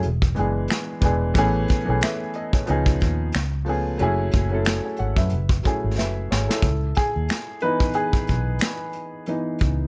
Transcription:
0.03 E1, closed hi-hat
0.22 kick
0.35 F#1 E3 G#3 B3 D4, closed hi-hat
0.39 G#4
0.68 finger snap, snare, closed hi-hat
1.01 E1 E3 G#3 B3 D4, kick, closed hi-hat
1.05 G#4
1.34 A1 E3 A3 B3 C#4, kick, closed hi-hat
1.39 G#4
1.68 kick, closed hi-hat
1.85 B1 E3 A3 B3 C#4
1.90 G#4
2.01 B4 E5, finger snap, snare, closed hi-hat
2.33 A4 D#5, closed hi-hat
2.53 G#4 C#5, kick
2.66 C#2 F3 B3 C#4 D#4, closed hi-hat
2.70 G#4
2.86 kick
3.00 D#2, kick, closed hi-hat
3.32 C#2, finger snap, snare, closed hi-hat
3.65 F3 A3 B3 C#4, open hi-hat
3.69 G#4
3.98 F#1 F#3 A3 C#4 E4, closed hi-hat
4.02 G#4
4.31 F#1, kick, closed hi-hat
4.49 F#3 A3 C#4 E4
4.54 A4
4.65 finger snap, snare, closed hi-hat
4.85 G#4 C#5
4.96 G#1 C#5 F#5, closed hi-hat
5.17 F#2 B4 E5, kick
5.30 F#1, closed hi-hat
5.49 kick
5.63 F#3 A3 C#4 E4, kick, closed hi-hat
5.67 G#4
5.84 G#1
5.98 F#1 B4 E5, snare
6.31 G#1 G#4 C#5, snare
6.49 E4 A4, snare
6.62 C#2, kick, closed hi-hat
6.95 G#4, kick, closed hi-hat
7.16 D#2
7.28 finger snap, snare, closed hi-hat
7.60 E3 B3 D#4 B4, closed hi-hat
7.80 kick
7.93 G#4, closed hi-hat
8.13 kick
8.27 B1, kick, closed hi-hat
8.59 finger snap, snare, closed hi-hat
8.93 closed hi-hat
9.26 E3 B3 D#4, closed hi-hat
9.59 C#2, kick, closed hi-hat

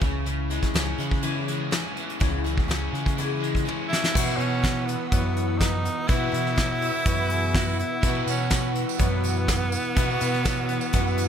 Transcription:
Already playing: C#4
0.01 C#2 C#3 E3 C#4 E4 G#4, kick, closed hi-hat
0.26 C#3, closed hi-hat
0.50 G#3 C#4 E4 G#4, closed hi-hat
0.62 kick, snare, closed hi-hat
0.74 C#2 E3 C#4 E4 G#4, snare, closed hi-hat
0.98 C#3 G#3 C#4 E4 G#4, closed hi-hat
1.11 kick
1.23 C#3 E3 C#4 E4 G#4, closed hi-hat
1.48 G#3, closed hi-hat
1.71 E3 C#4 E4 G#4, snare, closed hi-hat
1.97 E3, closed hi-hat
2.10 closed hi-hat
2.20 C#2 C#3 E3 C#4 E4 G#4, kick, closed hi-hat
2.44 G#3 C#4 E4 G#4, closed hi-hat
2.58 kick
2.68 C#2 E3 C#4 E4 G#4, snare, closed hi-hat
2.93 C#3 G#3, closed hi-hat
3.06 kick, closed hi-hat
3.18 C#3 E3 C#4 E4 G#4, closed hi-hat
3.41 G#3, closed hi-hat
3.55 kick, closed hi-hat
3.66 E3 C#4 E4 G#4, high tom
3.88 E3 E4
3.93 snare
4.04 snare
4.11 B2 E4 F#4 B4
4.15 B2 E3 B3 E4 F#4 B4 F#5 E6, kick, crash
4.37 B2 B3 C#4 E4 F#4, closed hi-hat
4.63 E3 B3 E4 F#4 B4, kick, snare, closed hi-hat
4.85 B3 E4 F#4, closed hi-hat
4.89 B3
5.10 F#2 B2 E3 B3 E4 F#4 C#5, kick, closed hi-hat
5.37 closed hi-hat
5.58 E3 B3 D#4 F#4 B4, kick, snare, closed hi-hat
5.85 closed hi-hat
6.08 B2 E3 B3 E4 F#4 B4, kick, closed hi-hat
6.32 B2 B3 E4 F#4, closed hi-hat
6.47 snare
6.56 E3 B3 E4 F#4 C#5, kick, snare, closed hi-hat
6.82 B3 E4 F#4 E5, closed hi-hat
7.06 F#2 B2 E3 B3 E4 F#4 B4 C#5, kick, closed hi-hat
7.20 B4
7.30 G#4, closed hi-hat
7.54 E3 B3 E4 F#4 B4, kick, snare, closed hi-hat
7.79 B3 E4 F#4, closed hi-hat
8.02 B2 E3 B3 E4 F#4 B4, kick, closed hi-hat
8.15 tambourine
8.27 B2 B3 C#4 E4 F#4, closed hi-hat, tambourine
8.50 E3 B3 E4 F#4 B4, kick, snare, closed hi-hat, tambourine
8.75 closed hi-hat, tambourine
8.89 tambourine
8.98 F#2 B2 E3 B3 E4 F#4 C#5, kick, closed hi-hat
9.24 closed hi-hat, tambourine
9.37 tambourine
9.48 E3 B3 E4 F#4 B4, kick, snare, closed hi-hat, tambourine
9.72 closed hi-hat, tambourine
9.96 B2 E3 B3 E4 F#4 B4, kick, closed hi-hat, tambourine
10.10 tambourine
10.20 B2 B3 E4 F#4, closed hi-hat, tambourine
10.34 snare, tambourine
10.45 E3 E4 F#4 C#5, kick, snare, closed hi-hat, tambourine
10.57 tambourine
10.69 B3 E4 F#4, closed hi-hat, tambourine
10.81 tambourine
10.93 F#2 B2 E3 B3 E4 F#4 B4, kick, closed hi-hat, tambourine
11.07 tambourine
11.18 closed hi-hat, tambourine

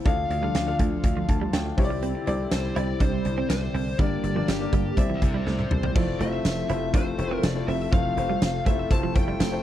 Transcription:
0.05 D2 D3 F3 A3 D4 F4 A4 F5, kick, closed hi-hat
0.30 D2, muted clean electric guitar stroke, closed hi-hat
0.42 G3 D4 F4 A4 F5
0.55 D2, snare, closed hi-hat
0.66 D4 F4 A4 F5
0.79 D2 A3, kick, closed hi-hat
1.04 D2, kick, closed hi-hat
1.17 F3
1.28 D2 A5, muted clean electric guitar stroke, kick, closed hi-hat
1.41 G3
1.53 D2 A3 G5, snare, closed hi-hat
1.66 muted clean electric guitar stroke
1.77 C2 C3 G3 C4 E4 G4 C#5, kick, open hi-hat
1.84 D5
1.90 G3
2.02 C4, closed hi-hat
2.15 muted clean electric guitar stroke
2.26 C2 C4 D4 E4 G4 D5, closed hi-hat
2.51 C2 C5, snare, closed hi-hat, tambourine
2.76 C2 C4 E4 G4 D5, closed hi-hat
3.00 C2 D4 C5, kick, closed hi-hat
3.25 C2, muted clean electric guitar stroke, closed hi-hat
3.38 C4
3.50 C2 C5, snare, closed hi-hat, tambourine
3.74 C2 C4, open hi-hat
3.99 G1 G2 D3 G3 A#3 D4 G4 D5, kick, closed hi-hat
4.23 G1, muted clean electric guitar stroke, closed hi-hat
4.35 F3 A#3 D4 G4 D5
4.48 G1 G4, snare, closed hi-hat, tambourine
4.60 A#3 D4 G4 D5
4.73 G1 G3, kick, closed hi-hat
4.97 C2 C3 C4 E4 G4 D5 E5, kick, closed hi-hat
5.10 E3
5.15 D5
5.22 C2 C5, muted clean electric guitar stroke, kick, closed hi-hat
5.34 G3
5.47 C2 A3, snare
5.59 muted clean electric guitar stroke, high tom
5.71 C2, mid tom
5.83 G3, floor tom
5.95 F1 C3 F3 A3 C4 E4 F4 A4 C5 D5, kick, crash
6.08 muted clean electric guitar stroke
6.20 F1 A3 C4 E4 F4 C5 E5, closed hi-hat
6.45 F1, snare, closed hi-hat, tambourine
6.69 F1 A3 C4 E4 F4 C5, closed hi-hat
6.93 F1 A3 C4 D4 E4 F4 C5, kick, closed hi-hat
7.18 F1 A3 C4 E4 F4 C5, muted clean electric guitar stroke, closed hi-hat
7.31 C4
7.43 F1 D5, snare, closed hi-hat, tambourine
7.55 A3 C4 E4 F4 C5
7.68 F1 C4 E5, open hi-hat
7.92 F1 F3 A3 C4 E4 F4 C5 F5, kick, closed hi-hat
8.17 F1 A3 C4 F4 C5, muted clean electric guitar stroke, closed hi-hat
8.29 G3
8.42 F1, snare, closed hi-hat, tambourine
8.66 F1 A3 C4 E4 F4 C5 E5, kick, closed hi-hat
8.90 F1 A3 C4 E4 F4 C5 A5, kick, closed hi-hat
9.03 F3
9.15 F1 A3 C4 E4 F4 C5 G5, muted clean electric guitar stroke, kick, closed hi-hat
9.28 G3
9.40 F1 A3, snare, closed hi-hat, tambourine
9.52 A3 C4 E4 F4 C5, muted clean electric guitar stroke

